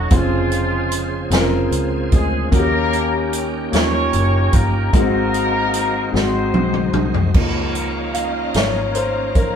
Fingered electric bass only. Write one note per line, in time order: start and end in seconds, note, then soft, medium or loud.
0.11 1.28 F1 loud
1.31 1.68 F1 medium
1.71 2.08 C#2 medium
2.12 2.49 D2 medium
2.52 3.69 D#2 medium
3.73 4.10 D#2 medium
4.14 4.51 F#1 medium
4.53 4.90 G1 medium
4.93 6.10 G#1 medium
6.14 6.51 G#1 medium
6.54 6.91 B1 medium
6.93 7.31 C2 medium
7.34 8.51 C#2 medium
8.55 9.56 G#1 medium